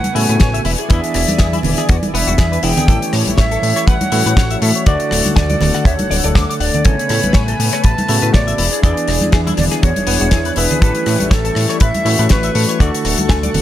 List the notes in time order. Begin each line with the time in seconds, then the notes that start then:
Already playing: C#3 A3 B3 B4 F#5 G#5 C#6
0.04 closed hi-hat, high conga
0.15 A2 C#3 A3 B3 E4 F#4 G#5, open hi-hat
0.29 A2 B4, closed hi-hat
0.40 A1 C#5, kick, snare, closed hi-hat
0.54 E5, closed hi-hat
0.65 E1 E4 D5 E5, open hi-hat
0.78 G#4, closed hi-hat
0.89 E2 E3 B3 D4 E4 G#4 E5, kick, closed hi-hat
1.04 closed hi-hat
1.14 E1, cross-stick, open hi-hat
1.29 E2, closed hi-hat, high conga
1.39 E2 G#4, kick, snare, closed hi-hat
1.53 E4, closed hi-hat, high conga
1.63 E1, open hi-hat, low conga
1.77 G#4, cross-stick, closed hi-hat
1.89 E2 F#4, kick, closed hi-hat
2.03 E1, closed hi-hat, high conga
2.14 E1 E3 B3 D4 B4 E5, open hi-hat
2.27 E1 F#4, closed hi-hat, high conga
2.38 E2 G#4, kick, snare, closed hi-hat
2.52 B4, closed hi-hat
2.63 E1 E3 B3 D4 E4 G#4 G5, open hi-hat
2.77 G#4, closed hi-hat, low conga
2.87 A1 E3 G3 A3 C#4 G4 A4 C#5, kick, closed hi-hat
3.02 closed hi-hat
3.13 A2, cross-stick, open hi-hat
3.27 A1, closed hi-hat, high conga
3.38 A1 C#5 E5, kick, snare, closed hi-hat
3.51 A4, closed hi-hat
3.63 A2, open hi-hat
3.76 C#5, cross-stick, closed hi-hat
3.87 A1 B4 F#5, kick, closed hi-hat
4.01 closed hi-hat, high conga
4.12 A2 E3 A3 C#4 E4 F#4, open hi-hat
4.26 A2 B4, closed hi-hat
4.37 A1 C#5, kick, snare, closed hi-hat
4.50 E5, closed hi-hat
4.62 A2 A4 E5, open hi-hat
4.75 C#5, closed hi-hat
4.86 D2 D3 A3 F#4 A4 D5 F#5, kick, closed hi-hat
5.00 closed hi-hat
5.11 D1, cross-stick, open hi-hat
5.25 D2, closed hi-hat, high conga
5.36 D2 D5 G#5, kick, snare, closed hi-hat
5.50 D5, closed hi-hat, high conga
5.61 D1, cross-stick, snare, open hi-hat, low conga
5.74 F#5, cross-stick, closed hi-hat
5.85 D2 C#5 E5, kick, closed hi-hat
5.99 D1, closed hi-hat, high conga
6.11 D1 D5, open hi-hat
6.23 D1 D3 A3 A4 D5, closed hi-hat, high conga
6.35 D2 D6, kick, snare, closed hi-hat
6.50 D6, closed hi-hat
6.60 D1 D5 F#5, open hi-hat
6.74 D5, closed hi-hat, low conga
6.84 A1 C#3 A3 B3 A4 B4 C#5 G#5 B5, kick, closed hi-hat
6.99 closed hi-hat
7.09 A2, cross-stick, open hi-hat
7.23 A1, closed hi-hat, high conga
7.33 A1 C#5 G#5, kick, snare, closed hi-hat
7.48 A4, closed hi-hat
7.60 A2, open hi-hat
7.72 C#5, cross-stick, closed hi-hat
7.83 A1 B4 A5, kick, closed hi-hat
7.98 closed hi-hat, high conga
8.08 A2 C#3 A3 B3 E4 F#4, open hi-hat
8.22 A2 B4, closed hi-hat
8.33 A1 C#5 D5, kick, snare, closed hi-hat
8.47 E5, closed hi-hat
8.58 E1 D4 E4 G#4, open hi-hat
8.72 G#4, closed hi-hat
8.82 E2 E3 B3 D4 E4 G#4 D5, kick, closed hi-hat
8.97 closed hi-hat
9.08 E1, cross-stick, open hi-hat
9.21 closed hi-hat, high conga
9.32 E2 G#4, kick, snare, closed hi-hat
9.47 E4, closed hi-hat, high conga
9.57 E1 D5, cross-stick, snare, open hi-hat, low conga
9.71 G#4, cross-stick, closed hi-hat
9.82 E2 F#4 C#5, kick, closed hi-hat
9.96 E1, closed hi-hat, high conga
10.07 E1 E3 B3 D4 B4, open hi-hat
10.20 E1 F#4, closed hi-hat, high conga
10.31 E2 G#4, kick, snare, closed hi-hat
10.45 B4, closed hi-hat
10.56 E1 E3 B3 D4 E4 G#4 B4, open hi-hat
10.70 G#4, closed hi-hat, low conga
10.81 A1 E3 G3 A3 C#4 G4 A4 C#6, kick, closed hi-hat
10.95 closed hi-hat
11.06 A2, cross-stick, open hi-hat
11.20 A1, closed hi-hat, high conga
11.31 A1 A4 C#5, kick, snare, closed hi-hat
11.45 A4, closed hi-hat
11.55 A2, cross-stick, snare, open hi-hat
11.69 C#5, cross-stick, closed hi-hat
11.80 A1 B4 E5, kick, closed hi-hat
11.94 closed hi-hat, high conga
12.05 A2 E3 A3 C#4 E4 F#4, open hi-hat
12.19 A2 B4, closed hi-hat
12.29 A1 B4 C#5, kick, snare, closed hi-hat
12.43 E5, closed hi-hat
12.55 A2 A4, open hi-hat
12.69 C#5, closed hi-hat
12.79 D2 D3 A3 F#4 A4 D5 F#5, kick, closed hi-hat
12.95 closed hi-hat
13.05 D1, cross-stick, open hi-hat
13.18 D2, closed hi-hat, high conga
13.29 D2 G#5, kick, snare, closed hi-hat
13.43 D5, closed hi-hat, high conga
13.54 D1, open hi-hat, low conga